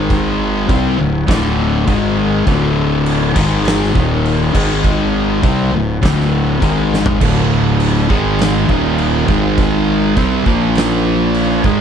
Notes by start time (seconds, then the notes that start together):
Already playing: G#1 G#2 D#3 G#3
0.10 kick, crash
0.68 C2 C3 G3 C4, kick, crash
0.98 D1 D2 A2
1.28 D1 D2 A2 D3, kick, snare, crash
1.86 G#1 G#2 D#3 G#3, kick, crash
2.46 D1 D2 A2 D3, kick, crash
3.06 crash
3.35 G#1 G#2 D#3 G#3, kick, crash
3.65 snare, crash
3.84 snare
3.93 D#1 D#2 A#2 D#3, kick
4.25 crash
4.54 G#1 G#2 D#3 G#3, kick, crash
4.84 kick, crash
5.42 C2 C3 G3 C4, kick, crash
5.72 D1 D2 A2
6.02 D1 D2 A2 D3, kick, snare, crash
6.21 snare
6.62 G#1 G#2 D#3 G#3, kick, crash
6.94 snare
7.06 floor tom
7.20 D1 D2 A2 D3, kick, crash
7.80 crash
8.09 G#1 G#2 D#3 G#3, kick
8.39 snare, crash
8.67 D#1 D#2 A#2 D#3, kick
8.98 crash
9.28 G#1 G#2 D#3 G#3, kick
9.58 kick, crash
10.16 C2 C3 G3 C4, kick, crash
10.46 A#1 A#2 F3 A#3, kick
10.75 snare, crash
11.34 crash
11.64 G#1 G#2 D#3 G#3, kick